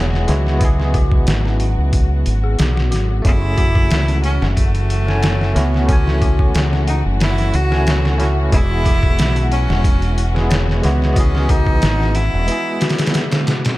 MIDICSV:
0, 0, Header, 1, 7, 480
1, 0, Start_track
1, 0, Tempo, 659341
1, 445, Time_signature, 4, 2, 24, 8
1, 10030, End_track
2, 0, Start_track
2, 0, Title_t, "Synth bell"
2, 0, Program_c, 0, 98
2, 0, Control_c, 0, 64, 127
2, 0, Note_on_c, 0, 61, 80
2, 0, Note_on_c, 0, 64, 80
2, 0, Note_on_c, 0, 66, 74
2, 0, Note_on_c, 0, 68, 74
2, 0, Note_on_c, 0, 73, 100
2, 0, Note_on_c, 0, 78, 107
2, 193, Note_off_c, 0, 73, 0
2, 204, Note_off_c, 0, 66, 0
2, 204, Note_on_c, 0, 66, 72
2, 325, Note_off_c, 0, 66, 0
2, 445, Note_on_c, 0, 66, 81
2, 454, Note_off_c, 0, 64, 0
2, 454, Note_off_c, 0, 68, 0
2, 454, Control_c, 0, 64, 0
2, 456, Note_off_c, 0, 61, 0
2, 456, Note_off_c, 0, 78, 0
2, 564, Control_c, 0, 64, 127
2, 566, Note_off_c, 0, 66, 0
2, 571, Note_on_c, 0, 64, 75
2, 679, Note_off_c, 0, 64, 0
2, 683, Note_on_c, 0, 66, 106
2, 799, Note_off_c, 0, 66, 0
2, 811, Note_on_c, 0, 66, 78
2, 918, Note_off_c, 0, 66, 0
2, 1053, Note_on_c, 0, 61, 80
2, 1154, Note_off_c, 0, 61, 0
2, 1166, Note_on_c, 0, 78, 94
2, 1286, Note_off_c, 0, 78, 0
2, 1773, Note_on_c, 0, 68, 98
2, 1874, Note_off_c, 0, 68, 0
2, 1884, Note_on_c, 0, 66, 77
2, 1999, Note_off_c, 0, 66, 0
2, 2010, Note_on_c, 0, 66, 76
2, 2112, Note_off_c, 0, 66, 0
2, 2120, Note_on_c, 0, 66, 101
2, 2237, Note_off_c, 0, 66, 0
2, 2249, Note_on_c, 0, 66, 79
2, 2351, Note_off_c, 0, 66, 0
2, 2360, Note_on_c, 0, 66, 78
2, 2374, Control_c, 0, 64, 0
2, 2484, Note_off_c, 0, 66, 0
2, 2486, Control_c, 0, 64, 127
2, 2486, Note_on_c, 0, 64, 75
2, 2596, Note_off_c, 0, 64, 0
2, 2602, Note_on_c, 0, 66, 98
2, 2718, Note_off_c, 0, 66, 0
2, 2731, Note_on_c, 0, 66, 77
2, 2839, Note_off_c, 0, 66, 0
2, 2968, Note_on_c, 0, 61, 78
2, 3071, Note_off_c, 0, 61, 0
2, 3082, Note_on_c, 0, 78, 100
2, 3205, Note_off_c, 0, 78, 0
2, 3689, Note_on_c, 0, 69, 71
2, 3798, Note_off_c, 0, 69, 0
2, 3801, Note_on_c, 0, 73, 96
2, 4032, Note_off_c, 0, 73, 0
2, 4044, Note_on_c, 0, 66, 72
2, 4165, Note_off_c, 0, 66, 0
2, 4287, Note_on_c, 0, 66, 82
2, 4407, Note_off_c, 0, 66, 0
2, 4413, Note_on_c, 0, 64, 78
2, 4520, Note_off_c, 0, 64, 0
2, 4527, Note_on_c, 0, 66, 100
2, 4640, Note_off_c, 0, 66, 0
2, 4658, Note_on_c, 0, 66, 82
2, 4762, Note_off_c, 0, 66, 0
2, 4895, Note_on_c, 0, 61, 79
2, 4995, Note_off_c, 0, 61, 0
2, 5005, Note_on_c, 0, 78, 99
2, 5126, Note_off_c, 0, 78, 0
2, 5613, Note_on_c, 0, 69, 76
2, 5720, Note_off_c, 0, 69, 0
2, 5727, Note_on_c, 0, 73, 95
2, 5955, Note_off_c, 0, 73, 0
2, 5965, Note_on_c, 0, 66, 74
2, 6086, Note_off_c, 0, 66, 0
2, 6206, Note_on_c, 0, 66, 87
2, 6214, Control_c, 0, 64, 0
2, 6327, Note_off_c, 0, 66, 0
2, 6334, Note_on_c, 0, 64, 79
2, 6359, Control_c, 0, 64, 127
2, 6440, Note_off_c, 0, 64, 0
2, 6447, Note_on_c, 0, 66, 107
2, 6561, Note_off_c, 0, 66, 0
2, 6573, Note_on_c, 0, 66, 83
2, 6679, Note_off_c, 0, 66, 0
2, 6813, Note_on_c, 0, 61, 79
2, 6914, Note_off_c, 0, 61, 0
2, 6928, Note_on_c, 0, 78, 104
2, 7047, Note_off_c, 0, 78, 0
2, 7531, Note_on_c, 0, 68, 76
2, 7639, Note_off_c, 0, 68, 0
2, 7642, Note_on_c, 0, 73, 106
2, 7872, Note_off_c, 0, 73, 0
2, 7883, Note_on_c, 0, 66, 80
2, 8005, Note_off_c, 0, 66, 0
2, 8124, Note_on_c, 0, 66, 86
2, 8134, Control_c, 0, 64, 0
2, 8245, Note_off_c, 0, 66, 0
2, 8253, Note_on_c, 0, 64, 76
2, 8259, Control_c, 0, 64, 127
2, 8359, Note_off_c, 0, 64, 0
2, 8366, Note_on_c, 0, 66, 110
2, 8480, Note_off_c, 0, 66, 0
2, 8493, Note_on_c, 0, 66, 77
2, 8599, Note_off_c, 0, 66, 0
2, 8736, Note_on_c, 0, 61, 77
2, 8835, Note_off_c, 0, 61, 0
2, 8850, Note_on_c, 0, 78, 102
2, 8968, Note_off_c, 0, 78, 0
2, 9093, Control_c, 0, 64, 0
2, 9206, Control_c, 0, 64, 127
2, 9328, Note_on_c, 0, 66, 105
2, 9441, Note_off_c, 0, 66, 0
2, 9455, Note_on_c, 0, 68, 77
2, 9555, Note_off_c, 0, 68, 0
2, 9562, Note_on_c, 0, 68, 97
2, 9678, Note_off_c, 0, 68, 0
2, 9693, Note_on_c, 0, 68, 85
2, 9799, Note_off_c, 0, 68, 0
2, 9806, Note_on_c, 0, 66, 82
2, 9926, Note_off_c, 0, 66, 0
2, 10030, End_track
3, 0, Start_track
3, 0, Title_t, "Tine electric piano"
3, 0, Program_c, 1, 4
3, 0, Control_c, 1, 64, 127
3, 0, Note_on_c, 1, 56, 84
3, 0, Note_on_c, 1, 59, 78
3, 0, Note_on_c, 1, 64, 81
3, 0, Note_on_c, 1, 68, 98
3, 173, Note_off_c, 1, 56, 0
3, 177, Note_off_c, 1, 59, 0
3, 181, Note_off_c, 1, 64, 0
3, 184, Note_off_c, 1, 68, 0
3, 199, Note_on_c, 1, 56, 96
3, 204, Note_on_c, 1, 59, 84
3, 213, Note_on_c, 1, 64, 83
3, 221, Note_on_c, 1, 66, 106
3, 415, Note_off_c, 1, 56, 0
3, 417, Note_off_c, 1, 59, 0
3, 422, Note_off_c, 1, 64, 0
3, 426, Note_off_c, 1, 66, 0
3, 427, Note_on_c, 1, 59, 94
3, 440, Note_on_c, 1, 75, 85
3, 454, Control_c, 1, 64, 0
3, 455, Note_on_c, 1, 64, 86
3, 471, Note_on_c, 1, 68, 108
3, 574, Control_c, 1, 64, 127
3, 1738, Note_off_c, 1, 59, 0
3, 1744, Note_off_c, 1, 75, 0
3, 1752, Note_off_c, 1, 64, 0
3, 1760, Note_off_c, 1, 68, 0
3, 2344, Note_on_c, 1, 57, 93
3, 2360, Note_on_c, 1, 61, 83
3, 2374, Control_c, 1, 64, 0
3, 2376, Note_on_c, 1, 64, 84
3, 2390, Note_on_c, 1, 68, 100
3, 2522, Control_c, 1, 64, 127
3, 3657, Note_off_c, 1, 57, 0
3, 3665, Note_off_c, 1, 61, 0
3, 3672, Note_off_c, 1, 64, 0
3, 3680, Note_off_c, 1, 68, 0
3, 3685, Note_on_c, 1, 57, 89
3, 3694, Note_on_c, 1, 61, 82
3, 3700, Note_on_c, 1, 64, 79
3, 3707, Note_on_c, 1, 80, 98
3, 4014, Note_off_c, 1, 57, 0
3, 4018, Note_off_c, 1, 61, 0
3, 4022, Note_off_c, 1, 64, 0
3, 4025, Note_off_c, 1, 80, 0
3, 4038, Note_on_c, 1, 57, 87
3, 4044, Note_on_c, 1, 61, 87
3, 4055, Note_on_c, 1, 64, 84
3, 4060, Note_on_c, 1, 66, 110
3, 4254, Note_off_c, 1, 57, 0
3, 4258, Note_off_c, 1, 61, 0
3, 4263, Note_off_c, 1, 64, 0
3, 4265, Note_off_c, 1, 66, 0
3, 4269, Note_on_c, 1, 57, 93
3, 4282, Note_on_c, 1, 61, 82
3, 4297, Note_on_c, 1, 52, 83
3, 4314, Note_on_c, 1, 80, 102
3, 5579, Note_off_c, 1, 57, 0
3, 5585, Note_off_c, 1, 61, 0
3, 5593, Note_off_c, 1, 52, 0
3, 5601, Note_off_c, 1, 80, 0
3, 5604, Note_on_c, 1, 57, 93
3, 5611, Note_on_c, 1, 61, 80
3, 5618, Note_on_c, 1, 64, 78
3, 5626, Note_on_c, 1, 80, 99
3, 5934, Note_off_c, 1, 57, 0
3, 5937, Note_off_c, 1, 61, 0
3, 5941, Note_off_c, 1, 64, 0
3, 5945, Note_off_c, 1, 80, 0
3, 5956, Note_on_c, 1, 57, 98
3, 5964, Note_on_c, 1, 61, 93
3, 5971, Note_on_c, 1, 64, 84
3, 5979, Note_on_c, 1, 66, 104
3, 6173, Note_off_c, 1, 57, 0
3, 6178, Note_off_c, 1, 61, 0
3, 6181, Note_off_c, 1, 64, 0
3, 6184, Note_on_c, 1, 56, 98
3, 6185, Note_off_c, 1, 66, 0
3, 6201, Note_on_c, 1, 59, 85
3, 6213, Control_c, 1, 64, 0
3, 6215, Note_on_c, 1, 64, 88
3, 6232, Note_on_c, 1, 68, 107
3, 6363, Control_c, 1, 64, 127
3, 7497, Note_off_c, 1, 56, 0
3, 7505, Note_off_c, 1, 59, 0
3, 7512, Note_off_c, 1, 64, 0
3, 7520, Note_off_c, 1, 68, 0
3, 7525, Note_on_c, 1, 56, 86
3, 7535, Note_on_c, 1, 59, 88
3, 7540, Note_on_c, 1, 64, 87
3, 7549, Note_on_c, 1, 68, 95
3, 7854, Note_off_c, 1, 56, 0
3, 7859, Note_off_c, 1, 59, 0
3, 7862, Note_off_c, 1, 64, 0
3, 7866, Note_off_c, 1, 68, 0
3, 7877, Note_on_c, 1, 56, 97
3, 7884, Note_on_c, 1, 59, 92
3, 7894, Note_on_c, 1, 64, 88
3, 7900, Note_on_c, 1, 66, 109
3, 8094, Note_off_c, 1, 56, 0
3, 8097, Note_off_c, 1, 59, 0
3, 8102, Note_off_c, 1, 64, 0
3, 8105, Note_off_c, 1, 66, 0
3, 8107, Note_on_c, 1, 59, 98
3, 8123, Note_on_c, 1, 75, 86
3, 8133, Control_c, 1, 64, 0
3, 8138, Note_on_c, 1, 52, 93
3, 8153, Note_on_c, 1, 68, 106
3, 8268, Control_c, 1, 64, 127
3, 9062, Note_off_c, 1, 59, 0
3, 9067, Note_on_c, 1, 56, 89
3, 9070, Note_off_c, 1, 75, 0
3, 9078, Note_off_c, 1, 52, 0
3, 9081, Note_on_c, 1, 59, 75
3, 9085, Note_off_c, 1, 68, 0
3, 9093, Control_c, 1, 64, 0
3, 9098, Note_on_c, 1, 64, 76
3, 9112, Note_on_c, 1, 68, 95
3, 9227, Control_c, 1, 64, 127
3, 9796, Note_off_c, 1, 56, 0
3, 9803, Note_off_c, 1, 59, 0
3, 9811, Note_off_c, 1, 64, 0
3, 9818, Note_off_c, 1, 68, 0
3, 10030, End_track
4, 0, Start_track
4, 0, Title_t, "Cello"
4, 0, Program_c, 2, 42
4, 2378, Note_on_c, 2, 64, 127
4, 3062, Note_off_c, 2, 64, 0
4, 3092, Note_on_c, 2, 61, 93
4, 3312, Note_off_c, 2, 61, 0
4, 3329, Note_on_c, 2, 57, 102
4, 4052, Note_on_c, 2, 59, 97
4, 4063, Note_off_c, 2, 57, 0
4, 4292, Note_on_c, 2, 61, 94
4, 4303, Note_off_c, 2, 59, 0
4, 4768, Note_off_c, 2, 61, 0
4, 5013, Note_on_c, 2, 63, 86
4, 5119, Note_off_c, 2, 63, 0
4, 5253, Note_on_c, 2, 64, 105
4, 5495, Note_on_c, 2, 66, 114
4, 5506, Note_off_c, 2, 64, 0
4, 5970, Note_off_c, 2, 66, 0
4, 6212, Note_on_c, 2, 64, 127
4, 6899, Note_off_c, 2, 64, 0
4, 6933, Note_on_c, 2, 61, 109
4, 7620, Note_off_c, 2, 61, 0
4, 7899, Note_on_c, 2, 59, 93
4, 8116, Note_off_c, 2, 59, 0
4, 8138, Note_on_c, 2, 61, 103
4, 8372, Note_on_c, 2, 63, 122
4, 8383, Note_off_c, 2, 61, 0
4, 8851, Note_on_c, 2, 64, 114
4, 8862, Note_off_c, 2, 63, 0
4, 9568, Note_off_c, 2, 64, 0
4, 10030, End_track
5, 0, Start_track
5, 0, Title_t, "String section"
5, 0, Program_c, 3, 48
5, 0, Note_on_c, 3, 54, 87
5, 0, Note_on_c, 3, 66, 86
5, 2357, Note_off_c, 3, 66, 0
5, 2365, Note_on_c, 3, 66, 86
5, 2366, Note_on_c, 3, 52, 83
5, 2377, Note_off_c, 3, 54, 0
5, 10030, Note_off_c, 3, 52, 0
5, 10030, Note_off_c, 3, 66, 0
5, 10030, End_track
6, 0, Start_track
6, 0, Title_t, "Fingered electric bass"
6, 0, Program_c, 4, 33
6, 0, Note_on_c, 4, 28, 88
6, 186, Note_off_c, 4, 28, 0
6, 210, Note_on_c, 4, 37, 93
6, 906, Note_off_c, 4, 37, 0
6, 930, Note_on_c, 4, 32, 102
6, 1270, Note_off_c, 4, 32, 0
6, 1297, Note_on_c, 4, 37, 90
6, 1626, Note_off_c, 4, 37, 0
6, 1651, Note_on_c, 4, 32, 82
6, 1888, Note_off_c, 4, 32, 0
6, 1893, Note_on_c, 4, 35, 85
6, 2132, Note_off_c, 4, 35, 0
6, 2132, Note_on_c, 4, 32, 96
6, 2341, Note_off_c, 4, 32, 0
6, 2368, Note_on_c, 4, 30, 100
6, 2825, Note_off_c, 4, 30, 0
6, 2851, Note_on_c, 4, 37, 101
6, 3191, Note_off_c, 4, 37, 0
6, 3218, Note_on_c, 4, 30, 90
6, 4026, Note_off_c, 4, 30, 0
6, 4049, Note_on_c, 4, 37, 86
6, 4745, Note_off_c, 4, 37, 0
6, 4770, Note_on_c, 4, 37, 103
6, 5110, Note_off_c, 4, 37, 0
6, 5139, Note_on_c, 4, 30, 86
6, 5466, Note_off_c, 4, 30, 0
6, 5491, Note_on_c, 4, 37, 86
6, 6186, Note_off_c, 4, 37, 0
6, 6210, Note_on_c, 4, 28, 104
6, 6666, Note_off_c, 4, 28, 0
6, 6692, Note_on_c, 4, 35, 102
6, 7031, Note_off_c, 4, 35, 0
6, 7058, Note_on_c, 4, 28, 98
6, 7866, Note_off_c, 4, 28, 0
6, 7894, Note_on_c, 4, 37, 89
6, 8588, Note_off_c, 4, 37, 0
6, 8613, Note_on_c, 4, 32, 105
6, 8952, Note_off_c, 4, 32, 0
6, 8980, Note_on_c, 4, 28, 91
6, 9089, Note_off_c, 4, 28, 0
6, 10030, End_track
7, 0, Start_track
7, 0, Title_t, "Drums"
7, 99, Note_on_c, 9, 38, 40
7, 171, Note_off_c, 9, 38, 0
7, 203, Note_on_c, 9, 42, 69
7, 211, Note_on_c, 9, 38, 46
7, 276, Note_off_c, 9, 42, 0
7, 284, Note_off_c, 9, 38, 0
7, 338, Note_on_c, 9, 38, 38
7, 411, Note_off_c, 9, 38, 0
7, 442, Note_on_c, 9, 42, 95
7, 444, Note_on_c, 9, 36, 117
7, 514, Note_off_c, 9, 42, 0
7, 516, Note_off_c, 9, 36, 0
7, 579, Note_on_c, 9, 38, 38
7, 652, Note_off_c, 9, 38, 0
7, 684, Note_on_c, 9, 36, 96
7, 685, Note_on_c, 9, 42, 65
7, 757, Note_off_c, 9, 36, 0
7, 758, Note_off_c, 9, 42, 0
7, 812, Note_on_c, 9, 36, 96
7, 885, Note_off_c, 9, 36, 0
7, 923, Note_on_c, 9, 42, 90
7, 930, Note_on_c, 9, 38, 120
7, 996, Note_off_c, 9, 42, 0
7, 1003, Note_off_c, 9, 38, 0
7, 1059, Note_on_c, 9, 38, 39
7, 1131, Note_off_c, 9, 38, 0
7, 1163, Note_on_c, 9, 42, 68
7, 1236, Note_off_c, 9, 42, 0
7, 1403, Note_on_c, 9, 42, 88
7, 1404, Note_on_c, 9, 36, 110
7, 1476, Note_off_c, 9, 42, 0
7, 1477, Note_off_c, 9, 36, 0
7, 1644, Note_on_c, 9, 42, 69
7, 1717, Note_off_c, 9, 42, 0
7, 1883, Note_on_c, 9, 42, 86
7, 1890, Note_on_c, 9, 38, 116
7, 1955, Note_off_c, 9, 42, 0
7, 1963, Note_off_c, 9, 38, 0
7, 2019, Note_on_c, 9, 38, 57
7, 2092, Note_off_c, 9, 38, 0
7, 2125, Note_on_c, 9, 42, 70
7, 2132, Note_on_c, 9, 38, 41
7, 2198, Note_off_c, 9, 42, 0
7, 2205, Note_off_c, 9, 38, 0
7, 2364, Note_on_c, 9, 42, 91
7, 2365, Note_on_c, 9, 36, 110
7, 2437, Note_off_c, 9, 42, 0
7, 2438, Note_off_c, 9, 36, 0
7, 2603, Note_on_c, 9, 42, 66
7, 2604, Note_on_c, 9, 36, 89
7, 2676, Note_off_c, 9, 42, 0
7, 2677, Note_off_c, 9, 36, 0
7, 2733, Note_on_c, 9, 36, 93
7, 2805, Note_off_c, 9, 36, 0
7, 2843, Note_on_c, 9, 42, 93
7, 2850, Note_on_c, 9, 38, 124
7, 2916, Note_off_c, 9, 42, 0
7, 2923, Note_off_c, 9, 38, 0
7, 2973, Note_on_c, 9, 42, 45
7, 3045, Note_off_c, 9, 42, 0
7, 3084, Note_on_c, 9, 42, 66
7, 3157, Note_off_c, 9, 42, 0
7, 3220, Note_on_c, 9, 38, 56
7, 3293, Note_off_c, 9, 38, 0
7, 3326, Note_on_c, 9, 36, 101
7, 3328, Note_on_c, 9, 42, 85
7, 3399, Note_off_c, 9, 36, 0
7, 3401, Note_off_c, 9, 42, 0
7, 3455, Note_on_c, 9, 42, 41
7, 3528, Note_off_c, 9, 42, 0
7, 3568, Note_on_c, 9, 42, 69
7, 3641, Note_off_c, 9, 42, 0
7, 3702, Note_on_c, 9, 38, 45
7, 3774, Note_off_c, 9, 38, 0
7, 3804, Note_on_c, 9, 42, 84
7, 3812, Note_on_c, 9, 38, 112
7, 3877, Note_off_c, 9, 42, 0
7, 3885, Note_off_c, 9, 38, 0
7, 3942, Note_on_c, 9, 38, 42
7, 4014, Note_off_c, 9, 38, 0
7, 4048, Note_on_c, 9, 42, 68
7, 4055, Note_on_c, 9, 38, 45
7, 4121, Note_off_c, 9, 42, 0
7, 4128, Note_off_c, 9, 38, 0
7, 4181, Note_on_c, 9, 38, 39
7, 4254, Note_off_c, 9, 38, 0
7, 4285, Note_on_c, 9, 36, 123
7, 4285, Note_on_c, 9, 42, 92
7, 4358, Note_off_c, 9, 36, 0
7, 4358, Note_off_c, 9, 42, 0
7, 4421, Note_on_c, 9, 38, 38
7, 4493, Note_off_c, 9, 38, 0
7, 4525, Note_on_c, 9, 36, 91
7, 4526, Note_on_c, 9, 42, 65
7, 4598, Note_off_c, 9, 36, 0
7, 4599, Note_off_c, 9, 42, 0
7, 4653, Note_on_c, 9, 36, 91
7, 4726, Note_off_c, 9, 36, 0
7, 4765, Note_on_c, 9, 42, 86
7, 4772, Note_on_c, 9, 38, 120
7, 4838, Note_off_c, 9, 42, 0
7, 4845, Note_off_c, 9, 38, 0
7, 4900, Note_on_c, 9, 38, 43
7, 4973, Note_off_c, 9, 38, 0
7, 5005, Note_on_c, 9, 42, 71
7, 5078, Note_off_c, 9, 42, 0
7, 5245, Note_on_c, 9, 42, 80
7, 5252, Note_on_c, 9, 38, 107
7, 5318, Note_off_c, 9, 42, 0
7, 5325, Note_off_c, 9, 38, 0
7, 5374, Note_on_c, 9, 42, 38
7, 5447, Note_off_c, 9, 42, 0
7, 5486, Note_on_c, 9, 42, 61
7, 5559, Note_off_c, 9, 42, 0
7, 5620, Note_on_c, 9, 38, 53
7, 5693, Note_off_c, 9, 38, 0
7, 5727, Note_on_c, 9, 42, 87
7, 5734, Note_on_c, 9, 38, 115
7, 5800, Note_off_c, 9, 42, 0
7, 5807, Note_off_c, 9, 38, 0
7, 5863, Note_on_c, 9, 38, 54
7, 5935, Note_off_c, 9, 38, 0
7, 5967, Note_on_c, 9, 42, 69
7, 5974, Note_on_c, 9, 38, 42
7, 6040, Note_off_c, 9, 42, 0
7, 6047, Note_off_c, 9, 38, 0
7, 6206, Note_on_c, 9, 36, 114
7, 6206, Note_on_c, 9, 42, 94
7, 6278, Note_off_c, 9, 36, 0
7, 6278, Note_off_c, 9, 42, 0
7, 6446, Note_on_c, 9, 36, 96
7, 6448, Note_on_c, 9, 42, 66
7, 6519, Note_off_c, 9, 36, 0
7, 6521, Note_off_c, 9, 42, 0
7, 6573, Note_on_c, 9, 36, 93
7, 6646, Note_off_c, 9, 36, 0
7, 6688, Note_on_c, 9, 42, 90
7, 6695, Note_on_c, 9, 38, 114
7, 6760, Note_off_c, 9, 42, 0
7, 6768, Note_off_c, 9, 38, 0
7, 6815, Note_on_c, 9, 42, 43
7, 6887, Note_off_c, 9, 42, 0
7, 6928, Note_on_c, 9, 42, 67
7, 7001, Note_off_c, 9, 42, 0
7, 7062, Note_on_c, 9, 38, 56
7, 7135, Note_off_c, 9, 38, 0
7, 7166, Note_on_c, 9, 36, 111
7, 7169, Note_on_c, 9, 42, 86
7, 7239, Note_off_c, 9, 36, 0
7, 7241, Note_off_c, 9, 42, 0
7, 7296, Note_on_c, 9, 42, 43
7, 7368, Note_off_c, 9, 42, 0
7, 7409, Note_on_c, 9, 42, 68
7, 7482, Note_off_c, 9, 42, 0
7, 7544, Note_on_c, 9, 38, 49
7, 7617, Note_off_c, 9, 38, 0
7, 7648, Note_on_c, 9, 42, 88
7, 7655, Note_on_c, 9, 38, 120
7, 7721, Note_off_c, 9, 42, 0
7, 7728, Note_off_c, 9, 38, 0
7, 7785, Note_on_c, 9, 38, 42
7, 7858, Note_off_c, 9, 38, 0
7, 7888, Note_on_c, 9, 42, 69
7, 7895, Note_on_c, 9, 38, 47
7, 7960, Note_off_c, 9, 42, 0
7, 7968, Note_off_c, 9, 38, 0
7, 8022, Note_on_c, 9, 38, 39
7, 8095, Note_off_c, 9, 38, 0
7, 8126, Note_on_c, 9, 36, 122
7, 8127, Note_on_c, 9, 42, 97
7, 8198, Note_off_c, 9, 36, 0
7, 8200, Note_off_c, 9, 42, 0
7, 8262, Note_on_c, 9, 38, 41
7, 8335, Note_off_c, 9, 38, 0
7, 8365, Note_on_c, 9, 36, 91
7, 8366, Note_on_c, 9, 42, 67
7, 8438, Note_off_c, 9, 36, 0
7, 8439, Note_off_c, 9, 42, 0
7, 8492, Note_on_c, 9, 36, 90
7, 8565, Note_off_c, 9, 36, 0
7, 8604, Note_on_c, 9, 42, 86
7, 8611, Note_on_c, 9, 38, 126
7, 8676, Note_off_c, 9, 42, 0
7, 8684, Note_off_c, 9, 38, 0
7, 8740, Note_on_c, 9, 38, 41
7, 8813, Note_off_c, 9, 38, 0
7, 8843, Note_on_c, 9, 42, 67
7, 8916, Note_off_c, 9, 42, 0
7, 9084, Note_on_c, 9, 42, 86
7, 9157, Note_off_c, 9, 42, 0
7, 9324, Note_on_c, 9, 42, 69
7, 9331, Note_on_c, 9, 38, 94
7, 9387, Note_off_c, 9, 42, 0
7, 9387, Note_on_c, 9, 42, 70
7, 9395, Note_off_c, 9, 38, 0
7, 9395, Note_on_c, 9, 38, 86
7, 9453, Note_off_c, 9, 42, 0
7, 9453, Note_on_c, 9, 42, 74
7, 9460, Note_off_c, 9, 38, 0
7, 9460, Note_on_c, 9, 38, 94
7, 9511, Note_off_c, 9, 42, 0
7, 9511, Note_on_c, 9, 42, 69
7, 9518, Note_off_c, 9, 38, 0
7, 9518, Note_on_c, 9, 38, 93
7, 9566, Note_off_c, 9, 42, 0
7, 9566, Note_on_c, 9, 42, 77
7, 9574, Note_off_c, 9, 38, 0
7, 9574, Note_on_c, 9, 38, 104
7, 9639, Note_off_c, 9, 42, 0
7, 9646, Note_off_c, 9, 38, 0
7, 9693, Note_on_c, 9, 42, 80
7, 9701, Note_on_c, 9, 38, 104
7, 9766, Note_off_c, 9, 42, 0
7, 9774, Note_off_c, 9, 38, 0
7, 9806, Note_on_c, 9, 42, 82
7, 9814, Note_on_c, 9, 38, 112
7, 9879, Note_off_c, 9, 42, 0
7, 9886, Note_off_c, 9, 38, 0
7, 9935, Note_on_c, 9, 42, 80
7, 9942, Note_on_c, 9, 38, 110
7, 10008, Note_off_c, 9, 42, 0
7, 10015, Note_off_c, 9, 38, 0
7, 10030, End_track
0, 0, End_of_file